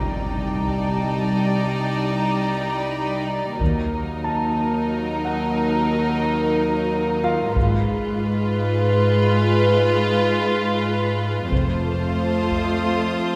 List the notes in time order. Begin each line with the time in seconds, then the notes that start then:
Already playing: C2 G3 D#4 D5 G5, impact
0.00 A#5
0.31 A5
0.64 taiko
0.95 A#5
2.51 A#5
2.66 B5
3.59 D#2 F#3 D#4 A#4, taiko
4.24 A5
5.25 F#5
7.24 F4 F5
7.55 G#1 G#2 G#3 F4 B4, taiko
11.51 F1 F2 A3 F4 C5 A5, taiko
12.18 D#6
12.51 taiko